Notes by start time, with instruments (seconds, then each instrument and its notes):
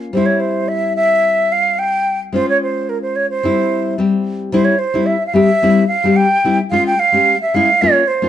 Already playing: nylon-string guitar A#3 C#4 F4
0.13 nylon-string guitar G3 C4 E4, flute C5
0.26 flute C#5
0.40 flute C5
0.68 flute E5
0.96 flute E5
1.52 flute F5
1.79 flute G5
2.32 nylon-string guitar G#3 C#4 F4, flute C5
2.49 flute C#5
2.63 flute C5
2.89 flute A#4
3.02 flute C5
3.16 flute C#5
3.30 flute C5
3.43 nylon-string guitar G3 C4 E4
3.98 nylon-string guitar G3 C4 G4
4.52 nylon-string guitar G3 C4 E4, flute C5
4.65 flute C#5
4.79 flute C5
4.94 nylon-string guitar G3 C4 E4
5.06 flute E5
5.27 flute F5
5.34 nylon-string guitar G3 C4 G4, flute E5
5.62 nylon-string guitar G3 C4 E4
5.88 flute F5
6.04 nylon-string guitar G3 C4 G4
6.16 flute G5
6.44 nylon-string guitar G3 C4 E4
6.70 nylon-string guitar G#3 C#4 F4, flute F5
6.87 flute G5
6.99 flute F5
7.12 nylon-string guitar G#3 C#4 G4
7.42 flute E5
7.54 nylon-string guitar G#3 C#4 E4, flute F5
7.82 nylon-string guitar A#3 C#4 F4, flute C#5
8.08 flute C5
8.22 nylon-string guitar A#3 C#4 F4